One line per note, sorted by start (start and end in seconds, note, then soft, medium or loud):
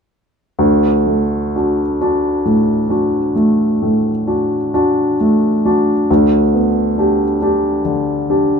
0.59 3.32 D2 soft
1.07 1.81 A3 soft
1.56 1.97 D4 soft
1.56 1.97 F#4 soft
2.01 2.42 D4 soft
2.01 2.42 F#4 soft
2.45 3.18 A2 soft
2.89 3.32 D4 soft
2.89 3.32 F#4 soft
3.35 4.09 A3 soft
3.82 4.56 A2 soft
4.28 4.70 D4 soft
4.28 4.70 F#4 soft
4.74 5.15 D4 soft
4.74 5.15 F#4 soft
5.21 5.91 A3 soft
5.65 6.05 D4 soft
5.65 6.05 F#4 soft
6.10 8.60 D2 soft
6.54 7.24 B3 soft
6.98 7.37 D4 soft
6.98 7.37 G4 soft
7.42 7.80 D4 soft
7.42 7.81 G4 soft
7.85 8.54 D3 soft
8.29 8.60 D4 soft
8.29 8.60 G4 soft